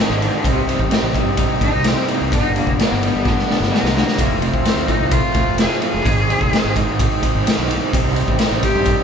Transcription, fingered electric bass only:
0, 0, Header, 1, 2, 480
1, 0, Start_track
1, 0, Tempo, 467654
1, 460, Time_signature, 4, 2, 24, 8
1, 9274, End_track
2, 0, Start_track
2, 0, Title_t, "Fingered electric bass"
2, 0, Program_c, 0, 33
2, 100, Note_on_c, 0, 32, 88
2, 300, Note_off_c, 0, 32, 0
2, 458, Note_on_c, 0, 36, 92
2, 759, Note_off_c, 0, 36, 0
2, 812, Note_on_c, 0, 33, 87
2, 916, Note_off_c, 0, 33, 0
2, 1052, Note_on_c, 0, 33, 73
2, 1156, Note_off_c, 0, 33, 0
2, 1290, Note_on_c, 0, 43, 78
2, 1495, Note_off_c, 0, 43, 0
2, 1653, Note_on_c, 0, 33, 101
2, 1757, Note_off_c, 0, 33, 0
2, 1786, Note_on_c, 0, 36, 87
2, 1984, Note_off_c, 0, 36, 0
2, 2271, Note_on_c, 0, 36, 77
2, 2368, Note_off_c, 0, 36, 0
2, 2382, Note_on_c, 0, 31, 87
2, 2682, Note_off_c, 0, 31, 0
2, 2737, Note_on_c, 0, 29, 78
2, 2840, Note_off_c, 0, 29, 0
2, 2998, Note_on_c, 0, 31, 91
2, 3192, Note_off_c, 0, 31, 0
2, 3231, Note_on_c, 0, 31, 80
2, 3429, Note_off_c, 0, 31, 0
2, 3697, Note_on_c, 0, 31, 88
2, 3801, Note_off_c, 0, 31, 0
2, 3934, Note_on_c, 0, 36, 83
2, 4139, Note_off_c, 0, 36, 0
2, 4296, Note_on_c, 0, 29, 81
2, 4600, Note_off_c, 0, 29, 0
2, 4653, Note_on_c, 0, 38, 75
2, 4759, Note_off_c, 0, 38, 0
2, 4882, Note_on_c, 0, 38, 77
2, 4992, Note_off_c, 0, 38, 0
2, 5125, Note_on_c, 0, 36, 76
2, 5334, Note_off_c, 0, 36, 0
2, 5489, Note_on_c, 0, 38, 102
2, 5596, Note_off_c, 0, 38, 0
2, 5607, Note_on_c, 0, 29, 86
2, 5814, Note_off_c, 0, 29, 0
2, 6099, Note_on_c, 0, 29, 78
2, 6202, Note_off_c, 0, 29, 0
2, 6209, Note_on_c, 0, 32, 93
2, 6515, Note_off_c, 0, 32, 0
2, 6583, Note_on_c, 0, 29, 87
2, 6684, Note_off_c, 0, 29, 0
2, 6819, Note_on_c, 0, 32, 92
2, 7021, Note_off_c, 0, 32, 0
2, 7068, Note_on_c, 0, 32, 86
2, 7266, Note_off_c, 0, 32, 0
2, 7541, Note_on_c, 0, 32, 93
2, 7642, Note_off_c, 0, 32, 0
2, 7783, Note_on_c, 0, 35, 78
2, 7983, Note_off_c, 0, 35, 0
2, 8140, Note_on_c, 0, 36, 88
2, 8440, Note_off_c, 0, 36, 0
2, 8497, Note_on_c, 0, 33, 87
2, 8599, Note_off_c, 0, 33, 0
2, 8734, Note_on_c, 0, 33, 76
2, 8837, Note_off_c, 0, 33, 0
2, 8986, Note_on_c, 0, 43, 89
2, 9183, Note_off_c, 0, 43, 0
2, 9274, End_track
0, 0, End_of_file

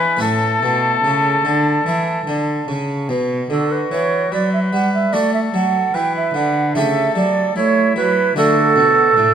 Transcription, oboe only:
0, 0, Header, 1, 2, 480
1, 0, Start_track
1, 0, Key_signature, 3, "major"
1, 0, Tempo, 821918
1, 126, Time_signature, 4, 2, 24, 8
1, 2048, Key_signature, 2, "major"
1, 2526, Tempo, 806452
1, 5511, End_track
2, 0, Start_track
2, 0, Title_t, "Oboe"
2, 0, Program_c, 0, 68
2, 0, Note_on_c, 0, 71, 97
2, 120, Note_off_c, 0, 71, 0
2, 125, Note_on_c, 0, 69, 91
2, 1544, Note_off_c, 0, 69, 0
2, 2046, Note_on_c, 0, 66, 57
2, 2525, Note_on_c, 0, 71, 72
2, 2534, Note_off_c, 0, 66, 0
2, 3007, Note_on_c, 0, 69, 60
2, 3016, Note_off_c, 0, 71, 0
2, 3489, Note_on_c, 0, 71, 68
2, 3498, Note_off_c, 0, 69, 0
2, 3969, Note_off_c, 0, 71, 0
2, 3972, Note_on_c, 0, 69, 71
2, 4442, Note_off_c, 0, 69, 0
2, 4454, Note_on_c, 0, 64, 70
2, 4921, Note_off_c, 0, 64, 0
2, 4929, Note_on_c, 0, 66, 79
2, 5396, Note_off_c, 0, 66, 0
2, 5407, Note_on_c, 0, 62, 80
2, 5511, Note_off_c, 0, 62, 0
2, 5511, End_track
0, 0, End_of_file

